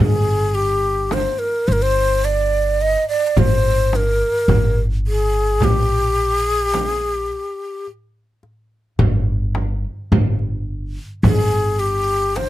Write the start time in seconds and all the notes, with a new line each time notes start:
Already playing: G2
0.00 G1 G#4
0.55 G4
1.11 C5, darbuka tek, frame drum
1.39 A#4
1.68 G1 C5
1.72 A#4
1.82 C5
2.24 D5, darbuka ka
2.80 D#5, darbuka ka
3.09 D5
3.27 D5
3.37 G1 C5, darbuka dum, frame drum
3.93 A#4, darbuka tek, frame drum
4.48 G1, frame drum, darbuka dum
4.77 darbuka ka
5.07 G#4
5.61 A#1 G4, darbuka dum, frame drum
6.46 G#4
6.62 G4
6.74 darbuka tek, frame drum
6.90 G#4
7.07 G4
7.87 darbuka ka
8.43 darbuka ka
8.99 G1, darbuka dum, frame drum
9.55 darbuka tek, frame drum
10.12 G1, darbuka dum, frame drum
10.39 darbuka ka
11.23 G1 G#4, darbuka dum, frame drum
11.80 G4
12.36 C5, darbuka tek, frame drum